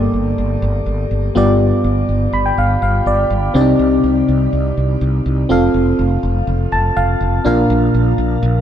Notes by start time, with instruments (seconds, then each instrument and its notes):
Already playing: fm electric piano G2 A#3 G4 A4 D5
0.14 fretless electric bass G1
0.38 fretless electric bass G1
0.62 fretless electric bass G1
0.86 fretless electric bass G1
1.11 fretless electric bass G1
1.35 fretless electric bass G1, fm electric piano G2 B3 F4 G4 D5
1.84 fretless electric bass G1
2.09 fretless electric bass G1
2.33 fretless electric bass G1, fm electric piano B5
2.46 fm electric piano G5
2.58 fretless electric bass G1, fm electric piano F5
2.82 fretless electric bass G1, fm electric piano F5
3.06 fretless electric bass G1, fm electric piano D5
3.30 fretless electric bass G1
3.54 fretless electric bass C2, fm electric piano C3 C4 D4 G4 D5
3.61 fm electric piano D#4
3.79 fretless electric bass C2
4.04 fretless electric bass C2
4.28 fretless electric bass C2
4.53 fretless electric bass C2
4.77 fretless electric bass C2
5.01 fretless electric bass C2
5.26 fretless electric bass C2
5.49 fretless electric bass F1, fm electric piano C4 F4 A4 F5
5.74 fretless electric bass F1
5.99 fretless electric bass F1
6.23 fretless electric bass F1
6.47 fretless electric bass F1
6.72 fretless electric bass F1, fm electric piano A5
6.97 fretless electric bass F1, fm electric piano F5
7.21 fretless electric bass F1
7.45 fretless electric bass A#1, fm electric piano A#2 D4 F4 A#4 F5
7.70 fretless electric bass A#1
7.94 fretless electric bass A#1
8.18 fretless electric bass A#1
8.43 fretless electric bass A#1